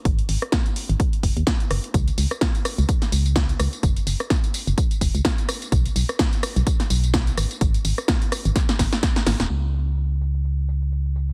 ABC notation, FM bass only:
X:1
M:4/4
L:1/16
Q:"Swing 16ths" 1/4=127
K:G#m
V:1 name="FM bass" clef=bass
G,,, z G,,, z4 G,,, z2 F,,, D,, z2 F,,, z | C,, z C,, z4 C,, z2 C,,3 z C,, z | F,,, z F,,, z4 F,,, z2 E,,, C,, z4 | B,,, z B,,, z4 B,,, z2 B,,,3 z G,,, z |
G,,, z G,,, z4 G,,, z2 G,,, z3 G,,, D,,, | C,,16 |]